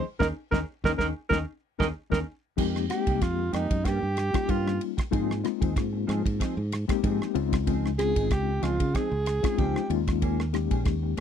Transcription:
0.19 fingered electric bass D#2, tenor saxophone D#3, reed electric piano A#3 C#4 D#4, clean electric guitar C#4 D#4 G#4, alto saxophone A#4, kick, snare
0.51 fingered electric bass D#2, tenor saxophone D#3, reed electric piano A#3 C#4 D#4, clean electric guitar C#4 D#4 G#4, alto saxophone A#4, kick, snare
0.84 fingered electric bass D#2, tenor saxophone D#3, reed electric piano A#3 C#4 D#4, clean electric guitar C#4 D#4 G#4, alto saxophone A#4, kick, snare
0.98 fingered electric bass D#2, tenor saxophone D#3, reed electric piano A#3 C#4 D#4, clean electric guitar C#4 D#4 G#4, alto saxophone A#4, kick, snare
1.29 fingered electric bass D#2, tenor saxophone D#3, reed electric piano A#3 C#4 D#4, clean electric guitar C#4 D#4 G#4, alto saxophone A#4, kick, snare
1.79 fingered electric bass D#2, tenor saxophone D#3, reed electric piano A#3 C#4 D#4, clean electric guitar C#4 D#4 G#4, alto saxophone A#4, kick, snare
2.10 fingered electric bass D#2, tenor saxophone D#3, reed electric piano A#3 C#4 D#4, clean electric guitar C#4 D#4 G#4, alto saxophone A#4, kick, snare
2.57 fingered electric bass F2, reed electric piano G#3 A#3 C4 D#4 G4, clean electric guitar G#3 A#3 D#4 G4, kick, crash
2.76 cross-stick
2.89 reed electric piano G#3 A#3 C4 D#4 G4, alto saxophone G4, muted clean electric guitar stroke, cross-stick, ride
3.07 fingered electric bass C2, clean electric guitar A#3 D#4 G4, kick, ride
3.21 fingered electric bass F2, alto saxophone F4, kick, cross-stick, ride
3.39 muted clean electric guitar stroke
3.53 fingered electric bass F2, clean electric guitar G#3 A#3 D#4 G4, alto saxophone D#4, cross-stick, ride
3.70 fingered electric bass F#2, muted clean electric guitar stroke, kick, ride
3.84 fingered electric bass G2, clean electric guitar A#3 C#4 G4, alto saxophone G4, kick, cross-stick, ride
4.02 fingered electric bass G2, muted clean electric guitar stroke
4.17 cross-stick, ride
4.33 reed electric piano G3 A#3 C#4 D#4 F4, muted clean electric guitar stroke, muted fingered electric bass stroke, kick, cross-stick, ride
4.48 fingered electric bass G2, clean electric guitar A#3 C#4 G4, alto saxophone F4, kick, ride
4.68 cross-stick
4.80 muted clean electric guitar stroke, ride
4.97 muted clean electric guitar stroke, kick, cross-stick, ride
5.11 fingered electric bass G#2, clean electric guitar F3 C4 D#4 G#4, reed electric piano G#3 A#3 C4 D#4 F4, kick, ride
5.31 cross-stick
5.43 reed electric piano G#3 A#3 C4 D#4 F4, muted clean electric guitar stroke, cross-stick, ride
5.61 fingered electric bass D#2, clean electric guitar C4 D#4 G#4, kick, ride
5.76 fingered electric bass G#2, muted clean electric guitar stroke, kick, cross-stick, ride
5.93 muted clean electric guitar stroke
6.07 fingered electric bass G#2, clean electric guitar F3 C4 D#4 G#4, cross-stick, ride
6.24 fingered electric bass G#2, muted clean electric guitar stroke, kick, ride
6.39 clean electric guitar F3 C4 D#4 G#4, kick, cross-stick, ride
6.57 fingered electric bass G#2, muted clean electric guitar stroke
6.72 cross-stick, ride
6.88 reed electric piano G#3 A#3 C4 D#4 G4, muted clean electric guitar stroke, kick, cross-stick, ride
7.04 fingered electric bass G#2, clean electric guitar F3 C4 D#4 G#4, kick, ride
7.22 cross-stick
7.34 fingered electric bass C#2, reed electric piano G#3 C4 C#4 D#4 F4, muted clean electric guitar stroke, ride
7.53 muted clean electric guitar stroke, kick, cross-stick, ride
7.67 clean electric guitar F3 C4 D#4 G#4, kick, ride
7.86 cross-stick
7.98 reed electric piano G#3 C4 C#4 D#4 F4, alto saxophone G#4, muted clean electric guitar stroke, cross-stick, ride
8.16 fingered electric bass G#1, clean electric guitar C4 D#4 G#4, kick, ride
8.30 fingered electric bass C#2, alto saxophone G4, muted clean electric guitar stroke, kick, cross-stick, ride
8.48 muted clean electric guitar stroke
8.62 fingered electric bass C#2, clean electric guitar F3 C4 D#4 G#4, alto saxophone F4, cross-stick, ride
8.80 fingered electric bass C#3, muted clean electric guitar stroke, kick, ride
8.94 clean electric guitar F3 C4 D#4 G#4, alto saxophone G#4, kick, cross-stick, ride
9.11 fingered electric bass C#2, muted clean electric guitar stroke
9.26 cross-stick, ride
9.43 reed electric piano G#3 C4 C#4 D#4 F4, muted clean electric guitar stroke, kick, cross-stick, ride
9.58 fingered electric bass C#2, clean electric guitar F3 C4 D#4 G#4, alto saxophone G4, kick, ride
9.76 cross-stick
9.89 fingered electric bass D#2, reed electric piano G#3 A#3 C#4 D#4 F4, muted clean electric guitar stroke, ride
10.08 muted clean electric guitar stroke, kick, cross-stick, ride
10.22 clean electric guitar A#3 C#4 G#4, kick, ride
10.40 cross-stick
10.53 reed electric piano G#3 A#3 C#4 D#4 G4, muted clean electric guitar stroke, cross-stick, ride
10.71 fingered electric bass A#1, clean electric guitar C#4 G#4, kick, ride
10.85 fingered electric bass D#2, muted clean electric guitar stroke, kick, cross-stick, ride
11.03 muted clean electric guitar stroke
11.17 clean electric guitar A#3

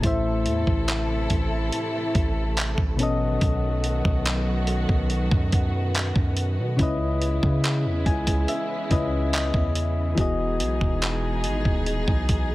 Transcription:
0.01 808-style bass A1, synth keys A2 A3 E4, string section C3 E3 A3 E4 A4, kick, closed hi-hat
0.05 synth keys C5 E5
0.46 808-style bass E2, closed hi-hat
0.67 808-style bass A1, kick
0.88 clap, closed hi-hat
1.30 808-style bass A1, kick, closed hi-hat
1.72 closed hi-hat
2.15 808-style bass A1, kick, closed hi-hat
2.57 clap, closed hi-hat
2.78 808-style bass A1, kick
2.97 synth keys B2 B3 C#4, string section D#3 F#3 B3 F#4, closed hi-hat
3.01 synth keys A4 D#5
3.41 808-style bass B1, kick, closed hi-hat
3.84 closed hi-hat
4.05 808-style bass B1, kick
4.26 clap, closed hi-hat
4.67 closed hi-hat
4.89 808-style bass B1, kick
5.10 closed hi-hat
5.31 808-style bass F#2, kick
5.52 kick, closed hi-hat
5.95 clap, closed hi-hat
6.16 808-style bass F#2, kick
6.37 closed hi-hat
6.58 808-style bass B2
6.77 808-style bass C#2, synth keys C#3 C#4 E4, string section C#3 E3 G#3 E4, kick, closed hi-hat
6.81 synth keys B4 D#5
7.22 closed hi-hat
7.43 808-style bass C#3, kick
7.64 clap, closed hi-hat
7.85 808-style bass E2
8.06 808-style bass C#2, synth keys G#5, kick, closed hi-hat
8.27 kick, closed hi-hat
8.48 synth keys E5, closed hi-hat
8.89 808-style bass C#2, synth keys C#3 C#4 E4 B4 D#5, kick, closed hi-hat
9.33 synth keys D#5, clap, closed hi-hat
9.54 808-style bass E2, kick
9.75 closed hi-hat
10.15 808-style bass E1, string section B2 G#3 D#4 G#4, synth keys E3 B3 F#4, kick, closed hi-hat
10.20 synth keys G#4 D#5
10.60 808-style bass B1, closed hi-hat
10.81 808-style bass E1, kick
11.02 clap, closed hi-hat
11.44 808-style bass G#1, closed hi-hat
11.65 808-style bass D#1, kick
11.86 closed hi-hat
12.08 808-style bass B1, kick
12.29 kick, closed hi-hat

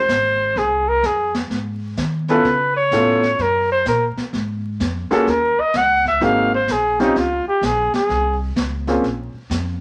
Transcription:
Already playing: trumpet C5
0.09 upright bass G#1, snare, hi-hat pedal
0.56 upright bass C2, trumpet G#4, brush sweep, snare
0.88 trumpet A#4
1.03 upright bass F2, trumpet G#4, snare, hi-hat pedal
1.35 snare
1.50 upright bass G#2, brush sweep, snare
1.97 upright bass D#3, snare, hi-hat pedal
2.28 grand piano B3 C#4 E4 F4 A4, trumpet B4, snare
2.44 upright bass C#3, brush sweep, snare
2.76 trumpet C#5
2.91 upright bass A2, grand piano B3 C#4 E4 F4 A4, snare, hi-hat pedal
3.23 snare
3.38 upright bass F#2, trumpet A#4, brush sweep, snare
3.72 trumpet C5
3.85 upright bass A#2, trumpet A#4, snare, hi-hat pedal
4.17 muted upright bass stroke, snare
4.33 upright bass G#2, brush sweep, snare
4.80 upright bass F2, snare, hi-hat pedal
5.11 grand piano A#3 C#4 F4 F#4 G#4, trumpet A4, muted upright bass stroke, snare
5.27 upright bass D#2, trumpet A#4, brush sweep, snare
5.58 trumpet D#5, muted upright bass stroke
5.74 upright bass C#2, trumpet F#5, snare, hi-hat pedal
6.05 trumpet E5, kick, snare
6.20 upright bass G#1, grand piano A#3 C4 D#4 F#4 G#4, trumpet F5, brush sweep, snare
6.55 trumpet C5
6.68 upright bass A#1, trumpet G#4, snare, hi-hat pedal
7.00 grand piano C4 C#4 D#4 F4 G4, trumpet D#4, snare
7.15 upright bass C#2, trumpet F4, brush sweep, snare
7.46 trumpet G4, muted upright bass stroke
7.61 upright bass A#1, trumpet G#4, snare, hi-hat pedal
7.93 trumpet G#4, muted upright bass stroke, snare
8.09 upright bass C2, brush sweep, snare
8.56 upright bass C#2, snare, hi-hat pedal
8.87 grand piano A#3 C4 C#4 F4 G#4, snare
9.03 upright bass A#1, brush sweep, snare
9.34 muted upright bass stroke
9.50 upright bass F2, snare, hi-hat pedal

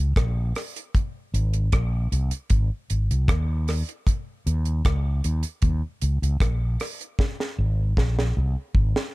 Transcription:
0.00 fretless electric bass C#2
0.16 fretless electric bass A#1, kick, cross-stick, closed hi-hat
0.55 cross-stick, open hi-hat
0.76 closed hi-hat
0.95 kick, closed hi-hat
1.34 fretless electric bass G#1, closed hi-hat
1.53 closed hi-hat
1.72 fretless electric bass A#1, kick, cross-stick, closed hi-hat
2.12 fretless electric bass C2, closed hi-hat
2.31 closed hi-hat
2.50 fretless electric bass G#1, kick, closed hi-hat
2.90 fretless electric bass G#1, closed hi-hat
3.11 fretless electric bass C2, closed hi-hat
3.28 fretless electric bass D#2, kick, cross-stick, closed hi-hat
3.68 cross-stick, open hi-hat
3.89 closed hi-hat
4.07 kick, closed hi-hat
4.46 fretless electric bass D#2, closed hi-hat
4.65 closed hi-hat
4.85 fretless electric bass C#2, kick, cross-stick, closed hi-hat
5.24 fretless electric bass D#2, closed hi-hat
5.43 closed hi-hat
5.62 fretless electric bass D#2, kick, closed hi-hat
6.02 fretless electric bass C#2, closed hi-hat
6.22 fretless electric bass C#2, closed hi-hat
6.40 fretless electric bass A#1, kick, cross-stick, closed hi-hat
6.80 cross-stick, open hi-hat
7.01 closed hi-hat
7.19 kick, snare
7.40 snare
7.58 fretless electric bass G#1
7.97 fretless electric bass A#1, kick, snare
8.19 snare
8.37 fretless electric bass C2
8.75 fretless electric bass G#1, kick
8.96 snare

